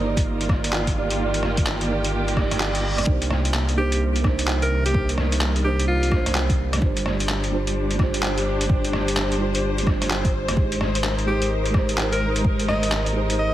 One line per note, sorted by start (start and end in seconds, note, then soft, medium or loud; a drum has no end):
0.00 3.05 G1 medium
0.00 3.07 D#3 medium
0.00 0.94 A#3 medium
0.00 4.59 A#3 medium
0.00 0.84 D#4 medium
0.00 0.95 D#4 medium
0.00 4.29 F4 medium
0.00 0.04 G4 medium
0.00 0.95 G4 medium
0.00 0.84 A#4 medium
0.00 0.85 C5 medium
0.00 0.07 D5 medium
0.07 0.96 D5 medium
0.17 kick loud
0.17 closed hi-hat medium
0.41 closed hi-hat soft
0.49 kick loud
0.49 cross-stick medium
0.64 closed hi-hat medium
0.73 clap medium
0.87 kick medium
0.87 closed hi-hat soft
0.94 1.14 A#3 medium
0.94 1.15 D#4 medium
0.94 4.30 G4 medium
0.94 1.16 G4 medium
0.94 1.16 D5 medium
1.11 closed hi-hat soft
1.16 1.86 A#3 medium
1.16 1.87 D#4 medium
1.21 1.88 G4 medium
1.21 1.90 D5 medium
1.34 closed hi-hat soft
1.43 cross-stick medium
1.57 kick medium
1.57 closed hi-hat medium
1.66 clap loud
1.81 closed hi-hat soft
1.87 2.31 A#3 medium
1.87 2.34 D#4 medium
1.87 2.35 G4 medium
1.92 2.36 D5 medium
2.04 closed hi-hat medium
2.13 reverse cymbal medium
2.28 closed hi-hat soft
2.33 3.02 A#3 medium
2.33 3.04 D#4 medium
2.33 kick medium
2.37 3.06 G4 medium
2.37 cross-stick medium
2.41 3.07 D5 loud
2.51 cross-stick medium
2.51 closed hi-hat medium
2.60 clap loud
2.75 closed hi-hat soft
2.98 cross-stick medium
2.98 closed hi-hat medium
3.03 6.80 C2 medium
3.03 3.73 A#3 medium
3.03 3.75 D4 medium
3.03 kick loud
3.08 6.82 C3 medium
3.08 3.76 D#4 medium
3.08 3.77 C5 medium
3.21 10.57 G3 medium
3.21 closed hi-hat soft
3.31 cross-stick medium
3.45 closed hi-hat medium
3.54 clap loud
3.69 closed hi-hat soft
3.76 4.19 A#3 medium
3.76 4.22 D4 medium
3.76 4.23 D#4 medium
3.76 4.02 G4 medium
3.76 4.23 C5 loud
3.92 closed hi-hat medium
4.16 closed hi-hat soft
4.20 4.89 A#3 loud
4.20 4.92 D4 medium
4.20 kick loud
4.24 6.82 D#3 medium
4.24 4.93 D#4 medium
4.24 cross-stick medium
4.28 4.94 C5 loud
4.39 closed hi-hat medium
4.48 clap loud
4.62 4.83 A#4 medium
4.62 closed hi-hat soft
4.85 5.10 G4 loud
4.85 closed hi-hat medium
4.91 5.61 A#3 medium
4.91 5.62 D4 medium
4.91 kick loud
4.96 5.63 D#4 medium
4.96 5.65 C5 medium
5.09 closed hi-hat soft
5.18 cross-stick medium
5.32 closed hi-hat medium
5.41 clap loud
5.56 closed hi-hat soft
5.63 6.06 A#3 medium
5.63 6.08 D4 medium
5.63 6.10 D#4 medium
5.63 5.86 G4 medium
5.63 6.11 C5 loud
5.80 closed hi-hat medium
5.88 6.26 F4 loud
6.03 closed hi-hat soft
6.07 6.78 A#3 medium
6.07 6.79 D4 medium
6.12 6.80 D#4 medium
6.12 kick loud
6.12 cross-stick medium
6.16 6.82 C5 loud
6.26 cross-stick medium
6.26 closed hi-hat medium
6.35 clap loud
6.50 kick loud
6.50 closed hi-hat soft
6.73 cross-stick medium
6.73 closed hi-hat medium
6.77 7.48 G3 medium
6.77 7.49 D4 medium
6.82 10.55 G1 medium
6.82 7.50 F4 medium
6.82 7.52 C5 medium
6.82 kick loud
6.96 10.56 D4 medium
6.96 closed hi-hat soft
7.06 13.54 C5 medium
7.06 cross-stick medium
7.20 closed hi-hat medium
7.29 clap loud
7.41 11.27 G4 medium
7.41 closed hi-hat soft
7.50 7.93 G3 medium
7.50 7.96 D4 medium
7.50 7.98 F4 medium
7.54 7.98 C5 loud
7.67 closed hi-hat medium
7.91 closed hi-hat soft
7.95 8.64 G3 loud
7.95 8.66 D4 medium
7.99 8.68 F4 medium
7.99 8.69 C5 loud
7.99 kick loud
7.99 cross-stick soft
8.14 closed hi-hat medium
8.23 clap loud
8.38 closed hi-hat soft
8.61 closed hi-hat medium
8.65 9.36 G3 medium
8.65 9.37 D4 medium
8.69 9.38 F4 medium
8.69 kick loud
8.74 9.40 C5 medium
8.85 closed hi-hat soft
8.93 cross-stick medium
9.08 closed hi-hat medium
9.17 clap loud
9.32 closed hi-hat soft
9.38 9.81 G3 medium
9.38 9.83 D4 medium
9.38 9.85 F4 medium
9.42 9.86 C5 loud
9.55 closed hi-hat medium
9.78 closed hi-hat soft
9.83 10.53 G3 medium
9.83 10.54 D4 medium
9.87 10.55 F4 medium
9.87 10.57 C5 loud
9.87 kick loud
9.87 cross-stick medium
10.02 cross-stick soft
10.02 closed hi-hat medium
10.10 clap loud
10.25 kick loud
10.25 closed hi-hat soft
10.48 cross-stick medium
10.48 closed hi-hat medium
10.53 11.23 G#3 medium
10.53 11.24 D#4 medium
10.57 13.54 G#1 medium
10.57 13.54 G#3 medium
10.57 11.26 G4 medium
10.57 11.27 C5 medium
10.57 kick loud
10.70 13.54 D#4 medium
10.70 closed hi-hat soft
10.81 cross-stick medium
10.95 13.54 A#4 medium
10.95 closed hi-hat medium
11.04 clap loud
11.19 closed hi-hat soft
11.26 11.69 G#3 medium
11.26 11.71 D#4 medium
11.26 11.52 G4 medium
11.26 11.73 G4 medium
11.26 11.73 C5 medium
11.42 closed hi-hat medium
11.66 closed hi-hat soft
11.70 12.39 G#3 medium
11.70 12.42 D#4 medium
11.70 kick loud
11.74 12.43 G4 medium
11.74 12.44 C5 loud
11.74 cross-stick soft
11.89 closed hi-hat medium
11.98 clap loud
12.12 12.33 A#4 medium
12.12 closed hi-hat soft
12.36 closed hi-hat medium
12.41 13.11 G#3 medium
12.41 13.12 D#4 medium
12.41 kick loud
12.46 13.13 G4 medium
12.46 13.15 C5 medium
12.60 closed hi-hat soft
12.69 13.06 D#5 loud
12.69 cross-stick medium
12.83 closed hi-hat medium
12.92 clap loud
13.06 closed hi-hat soft
13.13 13.54 G#3 medium
13.13 13.54 D#4 medium
13.13 13.54 G4 medium
13.13 13.54 C5 loud
13.30 closed hi-hat soft
13.39 13.54 D#5 loud